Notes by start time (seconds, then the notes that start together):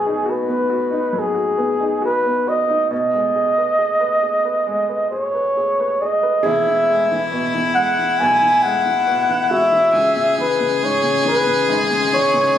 Already playing: B2 F#3 B3 G#4
0.06 D#4
0.26 F#4 B4
0.48 B3
0.70 F#4
0.91 D#4
1.13 F#3
1.19 G#4
1.35 F#4
1.57 B3
1.80 D#4
2.02 F#4 B4
2.25 B3
2.47 F#4 D#5
2.68 D#4
2.91 B2 D#5
3.14 G#3
3.36 G#4
3.58 B4
3.79 G#4
4.00 B4
4.23 G#4
4.45 B4
4.67 G#3
4.89 B4
5.11 G#4 C#5
5.34 B4
5.57 G#4
5.80 B4
6.01 G#4 D#5
6.23 B4
6.43 E1 E2 E4 G#4 E5
6.66 E3
6.90 G#3
7.12 E3
7.32 B2
7.54 E3
7.75 G#3 F#5
7.99 E3
8.19 B1 B2 G#5
8.42 E3
8.63 G#3 F#5
8.85 E3
9.07 B2
9.29 E3
9.49 G#3 F#4 E5
9.72 E3
9.93 C#2 G#4
10.16 C#3
10.38 E3 B4
10.60 C#3
10.82 G#2 C#5
11.03 C#3
11.24 E3 B4
11.46 C#3
11.69 G#1 G#2
11.91 C#3
12.13 E3 C#5
12.34 C#3